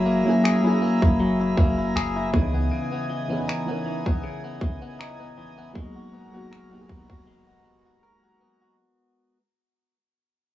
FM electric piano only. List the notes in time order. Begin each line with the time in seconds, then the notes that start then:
Already playing: F#3 A#3 C#4 E4 G#4
0.24 F#3 A#3 C#4 E4
0.29 G#4
0.62 F#3 A#3 C#4 E4
0.67 G#4
2.31 D#3 B3 C#4 D#4
2.36 E3 G#4
3.28 E3 B3 C#4 D#4
3.33 G#4
3.66 E3 B3 C#4 D#4
3.71 A#4
5.73 F#3 A#3 B3 D#4
5.78 G#4
6.32 F#3 A#3 B3 D#4
6.37 F#4
6.70 F#3 A#3 B3 D#4
6.74 G4
6.81 G#4